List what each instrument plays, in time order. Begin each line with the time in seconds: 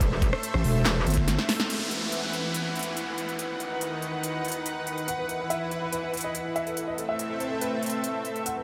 Already playing: wobble bass E1, supersaw synth A3 A4 C5 E5
0.01 kick, closed hi-hat
0.22 kick, closed hi-hat
0.33 cross-stick
0.43 closed hi-hat
0.54 wobble bass A1, cross-stick
0.64 wobble bass E1, open hi-hat
0.85 wobble bass E1, snare, clap, closed hi-hat
1.07 wobble bass G1, closed hi-hat
1.10 closed hi-hat
1.14 kick, closed hi-hat
1.28 snare, closed hi-hat
1.39 snare
1.49 snare, open hi-hat
1.60 snare, closed hi-hat
1.70 supersaw synth E3 E4 B4 F#5, closed hi-hat, crash, downlifter
1.91 closed hi-hat
2.12 closed hi-hat
2.33 closed hi-hat
2.54 closed hi-hat
2.76 closed hi-hat
2.79 closed hi-hat
2.83 closed hi-hat
2.97 closed hi-hat
3.18 closed hi-hat
3.29 closed hi-hat
3.39 supersaw synth D#3 D#4 B4, closed hi-hat
3.60 closed hi-hat
3.81 closed hi-hat
4.02 closed hi-hat
4.23 closed hi-hat
4.45 closed hi-hat
4.48 closed hi-hat
4.52 closed hi-hat
4.66 closed hi-hat
4.87 closed hi-hat
4.98 closed hi-hat
5.08 supersaw synth E3 E4, grand piano F#5, closed hi-hat
5.19 grand piano B4
5.29 closed hi-hat
5.40 grand piano B4
5.50 grand piano E5, closed hi-hat
5.61 grand piano B4
5.71 grand piano B4, closed hi-hat
5.82 grand piano B4
5.92 grand piano B4, closed hi-hat
6.03 grand piano B4
6.13 grand piano B4, closed hi-hat
6.17 closed hi-hat
6.21 grand piano D#5, closed hi-hat
6.35 grand piano B4, closed hi-hat
6.45 grand piano B4
6.56 grand piano E5, closed hi-hat
6.67 grand piano A4, closed hi-hat
6.77 supersaw synth A3 C4 A4 E5, grand piano A4, closed hi-hat
6.88 grand piano D#5
6.98 grand piano A4, closed hi-hat
7.09 grand piano E5
7.19 grand piano A4, closed hi-hat
7.30 grand piano A4
7.40 grand piano C5, closed hi-hat
7.51 grand piano A4
7.61 grand piano B4, closed hi-hat
7.83 closed hi-hat
7.86 closed hi-hat
7.90 closed hi-hat
8.04 closed hi-hat
8.25 closed hi-hat
8.36 closed hi-hat
8.46 supersaw synth E3 E4 F#4 B4, grand piano F#5, closed hi-hat, riser
8.57 grand piano B4